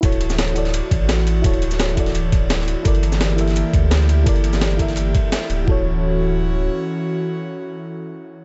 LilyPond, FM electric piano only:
\new Staff \with { instrumentName = "FM electric piano" } { \time 4/4 \key d \major \tempo 4 = 170 <e' fis' a' cis''>4. <e' fis' a' d''>2~ <e' fis' a' d''>8 | <e' fis' a' cis''>4. <e' fis' a' d''>2~ <e' fis' a' d''>8 | <e' a' bes' d''>4. <e' a' bes' e''>2~ <e' a' bes' e''>8 | <e' a' bes' d''>4. <e' a' bes' e''>2~ <e' a' bes' e''>8 |
<e' fis' a' cis''>1~ | <e' fis' a' cis''>1 | }